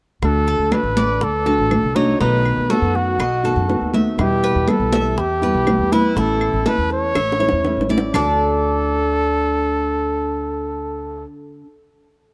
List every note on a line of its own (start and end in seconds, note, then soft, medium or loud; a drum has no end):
0.22 0.58 D2 medium
0.22 0.71 D3 medium
0.22 0.71 A3 medium
0.22 0.72 D4 medium
0.22 0.72 F#4 medium
0.22 0.74 A4 medium
0.22 high bongo medium
0.22 high conga soft
0.22 claves medium
0.47 0.95 A4 medium
0.47 high bongo soft
0.47 high conga soft
0.59 0.71 D2 medium
0.72 1.20 D3 soft
0.72 1.21 A3 soft
0.72 1.21 D4 medium
0.72 1.22 F#4 medium
0.72 1.25 B4 medium
0.72 high bongo medium
0.72 high conga medium
0.72 claves medium
0.83 1.19 A1 medium
0.97 1.45 D5 medium
0.97 high bongo soft
0.97 high conga medium
1.21 1.57 D2 medium
1.21 1.97 A4 medium
1.21 muted nylon-string guitar stroke medium
1.21 high bongo medium
1.21 high conga soft
1.46 1.70 A3 medium
1.46 1.71 D4 medium
1.46 1.70 F#4 medium
1.46 1.94 A4 medium
1.46 high bongo soft
1.46 high conga soft
1.59 1.82 A1 medium
1.71 1.95 D3 soft
1.71 1.95 A3 soft
1.71 1.95 D4 soft
1.71 1.94 F#4 medium
1.71 high bongo soft
1.71 low bongo medium
1.71 high conga medium
1.71 claves medium
1.83 2.18 C2 medium
1.95 2.20 A3 medium
1.95 2.20 D4 medium
1.95 2.19 D#4 medium
1.95 2.19 F#4 medium
1.95 2.20 C#5 medium
1.95 high conga medium
2.20 2.56 B1 medium
2.20 2.69 B2 medium
2.20 2.68 D#3 medium
2.20 2.69 A3 medium
2.20 2.70 B3 medium
2.20 2.69 D#4 medium
2.20 2.70 F#4 medium
2.20 2.72 B4 medium
2.20 high bongo medium
2.20 high conga soft
2.45 high bongo soft
2.45 high conga soft
2.45 claves soft
2.57 2.69 B1 medium
2.69 3.18 D#3 soft
2.69 3.18 A3 soft
2.69 3.19 B3 medium
2.69 3.18 F#4 medium
2.69 3.19 F#4 medium
2.69 2.97 A4 medium
2.69 high bongo medium
2.69 high conga medium
2.82 3.17 F#2 medium
2.95 3.94 F#4 medium
2.95 high bongo soft
2.95 high conga soft
3.19 3.54 B1 medium
3.19 3.44 D#5 medium
3.19 muted nylon-string guitar stroke medium
3.19 high bongo medium
3.19 high conga soft
3.19 claves medium
3.44 3.67 D#3 soft
3.44 3.68 A3 soft
3.44 3.68 B3 medium
3.44 3.68 F#4 medium
3.44 3.93 A4 medium
3.44 high bongo soft
3.44 high conga soft
3.56 3.80 F#2 medium
3.68 3.92 D#3 soft
3.68 3.93 A3 soft
3.68 3.93 B3 soft
3.68 3.92 F#4 medium
3.68 high bongo soft
3.68 low bongo medium
3.68 high conga soft
3.81 4.17 D#2 medium
3.93 4.18 D#3 medium
3.93 4.18 A3 medium
3.93 4.18 B3 medium
3.93 4.17 F#4 medium
3.93 4.42 E5 medium
3.93 high conga medium
4.18 4.54 E2 medium
4.18 4.67 B2 medium
4.18 4.66 E3 medium
4.18 4.67 G3 medium
4.18 4.68 B3 medium
4.18 4.68 E4 medium
4.18 4.71 G4 medium
4.18 high bongo medium
4.18 high conga soft
4.18 claves medium
4.43 4.92 B4 medium
4.43 high bongo soft
4.43 high conga soft
4.55 4.67 E2 medium
4.68 5.16 E3 soft
4.68 5.16 G3 soft
4.68 5.17 B3 medium
4.68 5.18 E4 soft
4.68 5.20 A4 medium
4.68 high bongo soft
4.68 high conga medium
4.68 claves medium
4.79 5.15 B1 medium
4.93 5.41 E5 medium
4.93 high bongo soft
4.93 high conga loud
5.17 5.52 E2 medium
5.17 5.94 G4 medium
5.17 muted nylon-string guitar stroke soft
5.17 high bongo medium
5.17 high conga soft
5.42 5.65 E3 medium
5.42 5.67 G3 medium
5.42 5.66 B3 medium
5.42 5.66 E4 medium
5.42 5.91 B4 medium
5.42 high bongo soft
5.42 high conga soft
5.54 5.78 B1 medium
5.67 5.91 E3 soft
5.67 5.91 G3 soft
5.67 5.91 B3 medium
5.67 5.91 E4 medium
5.67 high bongo soft
5.67 low bongo medium
5.67 high conga medium
5.67 claves medium
5.79 6.14 E2 medium
5.92 6.15 E3 soft
5.92 6.16 G3 medium
5.92 6.16 B3 medium
5.92 6.16 E4 medium
5.92 6.17 B4 medium
5.92 high conga medium
6.16 6.52 A1 medium
6.16 6.64 E3 medium
6.16 6.65 A3 medium
6.16 6.65 C#4 medium
6.16 6.65 E4 medium
6.16 6.66 E4 medium
6.16 6.69 A4 medium
6.16 high bongo medium
6.16 high conga soft
6.41 high bongo soft
6.41 high conga soft
6.41 claves medium
6.53 6.65 A1 medium
6.65 7.14 E3 soft
6.65 7.15 A3 soft
6.65 7.15 C#4 soft
6.65 7.15 E4 medium
6.65 7.14 A4 medium
6.65 6.91 B4 medium
6.65 high bongo medium
6.65 high conga medium
6.78 7.13 E2 medium
6.90 7.87 C#5 loud
6.90 high bongo soft
6.90 high conga soft
7.15 7.51 A1 medium
7.15 7.39 E5 medium
7.15 muted nylon-string guitar stroke medium
7.15 high bongo medium
7.15 high conga soft
7.15 claves medium
7.32 high bongo medium
7.39 7.64 A3 soft
7.39 7.64 C#4 medium
7.39 7.63 E4 medium
7.39 7.88 C#5 medium
7.39 high conga soft
7.49 7.76 E2 medium
7.49 low bongo medium
7.64 7.88 E3 soft
7.64 7.89 A3 soft
7.64 7.89 C#4 soft
7.64 7.89 E4 medium
7.64 low bongo medium
7.64 high conga soft
7.77 8.12 A1 medium
7.81 low bongo medium
7.89 8.13 A3 medium
7.89 8.14 C#4 medium
7.89 8.13 E4 medium
7.89 8.14 D5 medium
7.89 high conga medium
7.98 low bongo loud
8.13 11.23 D2 medium
8.13 11.63 D3 medium
8.13 11.64 A3 medium
8.13 11.24 D4 medium
8.13 11.66 D4 medium
8.13 11.24 A4 medium
8.13 11.25 D5 medium
8.13 low bongo medium
8.13 low conga medium
8.13 claves medium
8.17 11.67 F#4 medium